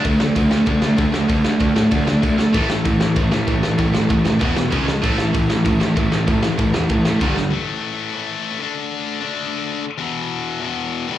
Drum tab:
CC |x-x-x-x-|x-x-x-x-|x-x-x-x-|x-x-x-x-|
SD |-o-o-o-o|-o-o-o-o|-o-o-o-o|-o-o-o-o|
BD |o-o-o-o-|o-o-o-o-|o-o-o-o-|o-o-o-o-|

CC |x-x-x-x-|x-x-x-x-|--------|--------|
SD |-o-o-o-o|-o-o-o-o|--------|--------|
BD |o-o-o-o-|o-o-o-o-|--------|--------|

CC |--------|
SD |--------|
BD |--------|